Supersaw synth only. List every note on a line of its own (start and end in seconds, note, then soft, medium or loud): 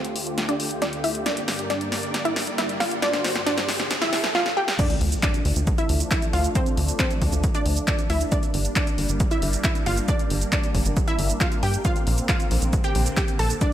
0.00 1.22 D2 medium
0.00 4.31 D3 medium
0.00 1.22 A3 medium
0.00 1.22 F4 medium
0.00 4.31 G4 medium
1.26 4.32 G2 medium
1.26 4.32 A#3 medium
1.26 3.01 D5 medium
3.02 4.33 C5 medium
4.79 8.28 F3 medium
4.79 8.28 A3 medium
11.85 13.73 D3 medium
11.85 13.60 C4 medium